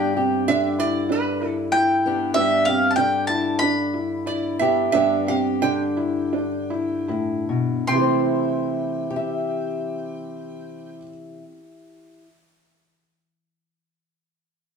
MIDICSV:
0, 0, Header, 1, 5, 480
1, 0, Start_track
1, 0, Key_signature, 0, "major"
1, 0, Tempo, 626305
1, 1804, Time_signature, 4, 2, 24, 8
1, 2771, Tempo, 657174
1, 3731, Tempo, 703400
1, 4691, Tempo, 772201
1, 5651, Tempo, 816327
1, 9696, End_track
2, 0, Start_track
2, 0, Title_t, "Mandolin"
2, 0, Program_c, 0, 25
2, 0, Note_on_c, 0, 79, 79
2, 820, Note_off_c, 0, 79, 0
2, 1318, Note_on_c, 0, 79, 99
2, 1791, Note_off_c, 0, 79, 0
2, 1795, Note_on_c, 0, 76, 98
2, 2033, Note_on_c, 0, 77, 100
2, 2046, Note_off_c, 0, 76, 0
2, 2227, Note_on_c, 0, 81, 71
2, 2231, Note_off_c, 0, 77, 0
2, 2264, Note_off_c, 0, 81, 0
2, 2267, Note_on_c, 0, 79, 98
2, 2504, Note_off_c, 0, 79, 0
2, 2507, Note_on_c, 0, 81, 104
2, 2747, Note_off_c, 0, 81, 0
2, 2750, Note_on_c, 0, 83, 105
2, 5125, Note_off_c, 0, 83, 0
2, 5647, Note_on_c, 0, 84, 92
2, 7455, Note_off_c, 0, 84, 0
2, 9696, End_track
3, 0, Start_track
3, 0, Title_t, "Resonator guitar played with a steel bar"
3, 0, Program_c, 1, 25
3, 368, Note_on_c, 1, 76, 114
3, 607, Note_off_c, 1, 76, 0
3, 610, Note_on_c, 1, 74, 108
3, 856, Note_off_c, 1, 74, 0
3, 857, Note_on_c, 1, 71, 78
3, 1186, Note_off_c, 1, 71, 0
3, 3249, Note_on_c, 1, 74, 76
3, 3483, Note_off_c, 1, 74, 0
3, 3486, Note_on_c, 1, 76, 89
3, 3717, Note_off_c, 1, 76, 0
3, 3725, Note_on_c, 1, 76, 102
3, 3969, Note_off_c, 1, 76, 0
3, 3972, Note_on_c, 1, 77, 90
3, 4035, Note_off_c, 1, 77, 0
3, 4202, Note_on_c, 1, 79, 90
3, 5134, Note_off_c, 1, 79, 0
3, 5652, Note_on_c, 1, 79, 78
3, 7460, Note_off_c, 1, 79, 0
3, 9696, End_track
4, 0, Start_track
4, 0, Title_t, "Felt piano"
4, 0, Program_c, 2, 0
4, 0, Note_on_c, 2, 62, 104
4, 122, Note_off_c, 2, 62, 0
4, 126, Note_on_c, 2, 60, 86
4, 362, Note_off_c, 2, 60, 0
4, 368, Note_on_c, 2, 62, 98
4, 602, Note_on_c, 2, 64, 83
4, 603, Note_off_c, 2, 62, 0
4, 836, Note_on_c, 2, 62, 91
4, 840, Note_off_c, 2, 64, 0
4, 1076, Note_off_c, 2, 62, 0
4, 1085, Note_on_c, 2, 64, 81
4, 1311, Note_off_c, 2, 64, 0
4, 1322, Note_on_c, 2, 64, 94
4, 1793, Note_off_c, 2, 64, 0
4, 1797, Note_on_c, 2, 62, 102
4, 2035, Note_off_c, 2, 62, 0
4, 2038, Note_on_c, 2, 60, 85
4, 2277, Note_off_c, 2, 60, 0
4, 2277, Note_on_c, 2, 62, 88
4, 2518, Note_off_c, 2, 62, 0
4, 2526, Note_on_c, 2, 64, 93
4, 2766, Note_off_c, 2, 64, 0
4, 2774, Note_on_c, 2, 62, 89
4, 3003, Note_off_c, 2, 62, 0
4, 3006, Note_on_c, 2, 64, 77
4, 3233, Note_off_c, 2, 64, 0
4, 3244, Note_on_c, 2, 64, 89
4, 3721, Note_off_c, 2, 64, 0
4, 3731, Note_on_c, 2, 62, 104
4, 3960, Note_off_c, 2, 62, 0
4, 3960, Note_on_c, 2, 60, 86
4, 4195, Note_off_c, 2, 60, 0
4, 4201, Note_on_c, 2, 62, 92
4, 4439, Note_off_c, 2, 62, 0
4, 4440, Note_on_c, 2, 64, 83
4, 4684, Note_off_c, 2, 64, 0
4, 4685, Note_on_c, 2, 62, 87
4, 4915, Note_off_c, 2, 62, 0
4, 4919, Note_on_c, 2, 64, 86
4, 5146, Note_off_c, 2, 64, 0
4, 5155, Note_on_c, 2, 64, 87
4, 5640, Note_off_c, 2, 64, 0
4, 5644, Note_on_c, 2, 60, 75
4, 5669, Note_on_c, 2, 64, 78
4, 5693, Note_on_c, 2, 67, 77
4, 5718, Note_on_c, 2, 72, 73
4, 7453, Note_off_c, 2, 60, 0
4, 7478, Note_off_c, 2, 64, 0
4, 7501, Note_off_c, 2, 67, 0
4, 7526, Note_off_c, 2, 72, 0
4, 9696, End_track
5, 0, Start_track
5, 0, Title_t, "Steel-string acoustic guitar"
5, 0, Program_c, 3, 25
5, 0, Note_on_c, 3, 43, 81
5, 0, Note_on_c, 3, 50, 70
5, 0, Note_on_c, 3, 59, 63
5, 0, Note_on_c, 3, 62, 67
5, 0, Note_on_c, 3, 67, 74
5, 126, Note_off_c, 3, 67, 0
5, 129, Note_on_c, 3, 67, 77
5, 365, Note_off_c, 3, 50, 0
5, 374, Note_on_c, 3, 50, 75
5, 1573, Note_off_c, 3, 59, 0
5, 1576, Note_on_c, 3, 59, 65
5, 1581, Note_off_c, 3, 62, 0
5, 1584, Note_on_c, 3, 62, 68
5, 1585, Note_off_c, 3, 67, 0
5, 1588, Note_on_c, 3, 67, 79
5, 1808, Note_off_c, 3, 43, 0
5, 1811, Note_on_c, 3, 43, 78
5, 1815, Note_off_c, 3, 59, 0
5, 1818, Note_on_c, 3, 59, 67
5, 1819, Note_off_c, 3, 62, 0
5, 1822, Note_on_c, 3, 62, 74
5, 1823, Note_off_c, 3, 67, 0
5, 1826, Note_on_c, 3, 67, 80
5, 2056, Note_off_c, 3, 67, 0
5, 2059, Note_on_c, 3, 67, 73
5, 2275, Note_off_c, 3, 50, 0
5, 2284, Note_on_c, 3, 50, 76
5, 3483, Note_off_c, 3, 59, 0
5, 3487, Note_off_c, 3, 62, 0
5, 3492, Note_on_c, 3, 59, 64
5, 3496, Note_on_c, 3, 62, 61
5, 3501, Note_off_c, 3, 67, 0
5, 3503, Note_on_c, 3, 67, 74
5, 3705, Note_off_c, 3, 59, 0
5, 3706, Note_off_c, 3, 43, 0
5, 3707, Note_off_c, 3, 62, 0
5, 3738, Note_on_c, 3, 43, 74
5, 3742, Note_on_c, 3, 59, 71
5, 3746, Note_on_c, 3, 62, 66
5, 3749, Note_off_c, 3, 67, 0
5, 3751, Note_on_c, 3, 67, 75
5, 3970, Note_off_c, 3, 67, 0
5, 3978, Note_on_c, 3, 67, 74
5, 4202, Note_off_c, 3, 50, 0
5, 4209, Note_on_c, 3, 50, 72
5, 5159, Note_on_c, 3, 45, 64
5, 5402, Note_off_c, 3, 45, 0
5, 5408, Note_on_c, 3, 47, 73
5, 5624, Note_off_c, 3, 43, 0
5, 5626, Note_off_c, 3, 59, 0
5, 5627, Note_off_c, 3, 67, 0
5, 5628, Note_off_c, 3, 62, 0
5, 5644, Note_off_c, 3, 47, 0
5, 5647, Note_on_c, 3, 48, 68
5, 5655, Note_off_c, 3, 50, 0
5, 5678, Note_on_c, 3, 52, 68
5, 5708, Note_on_c, 3, 57, 57
5, 5737, Note_on_c, 3, 60, 63
5, 5767, Note_on_c, 3, 64, 59
5, 6368, Note_off_c, 3, 57, 0
5, 6371, Note_on_c, 3, 67, 78
5, 6401, Note_off_c, 3, 64, 0
5, 6403, Note_on_c, 3, 76, 83
5, 7705, Note_off_c, 3, 48, 0
5, 7736, Note_off_c, 3, 52, 0
5, 7795, Note_off_c, 3, 60, 0
5, 8203, Note_off_c, 3, 67, 0
5, 8235, Note_off_c, 3, 76, 0
5, 9696, End_track
0, 0, End_of_file